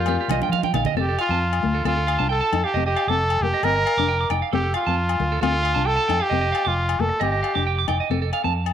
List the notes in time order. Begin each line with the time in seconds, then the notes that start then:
Already playing: F2 A#2 F4
0.06 C4 G4, muted conga, low agogo
0.21 G4
0.28 C2 D#5, muted conga, high conga, low agogo
0.42 D4 G5, high conga
0.49 F3 F5, high conga
0.63 G5, high conga
0.73 A#1 D#4 F5, low conga, low agogo
0.85 D#5, low conga
0.94 F1 C4 A4
0.99 G4
1.09 A4
1.19 F4 F5, low agogo
1.29 F2 C4 A5
1.53 low agogo
1.63 D2 A3
1.74 A4
1.85 D2 C4 F4 A4, low agogo
1.97 A4
2.07 F5, low agogo
2.19 C2 D4 A5
2.29 A4 G5
2.41 A5
2.52 F2 D#4, low agogo
2.64 G4 F5
2.74 F1 C4 D#5
2.86 G4 D#5
2.96 F5, low agogo
3.07 F1 C4 A4 D6
3.30 low agogo
3.41 F1 A#3 G4
3.54 D#5
3.63 G1 C4 A#4 D#5, low agogo
3.76 D#5
3.86 F5, low agogo
3.97 F1 D4 D6
4.09 G5
4.21 D6
4.30 F1 D#4 G5, low agogo
4.42 F5
4.53 F1 C4 G4 A4
4.63 A4
4.74 F4 F5, low agogo
4.87 F2 C4 A5
5.09 low agogo
5.20 D2, muted nylon-string guitar stroke
5.32 A4
5.41 D2 C4 F4 A4, low agogo
5.52 A4
5.63 F5, low agogo
5.75 C2 D4 A5
5.85 A4 G5
5.97 A5
6.08 F2 D#4 G5, low agogo
6.20 G4 F5
6.30 F1 C4 D#5
6.41 D#5
6.52 F5, low agogo
6.65 F1 F4 D6, muted nylon-string guitar stroke
6.89 low agogo
6.99 F1 A#3 A4
7.09 muted clean electric guitar stroke
7.20 G1 C4 G4 D#5, low agogo
7.32 D#5
7.43 F5, low agogo
7.55 F1 D4 D6
7.67 G5
7.79 D6
7.88 F1 D#4 G5, low agogo
8.00 D#5
8.10 F1 C4 A4
8.22 A4
8.33 F5, low agogo
8.44 F2 C4 A5
8.66 low agogo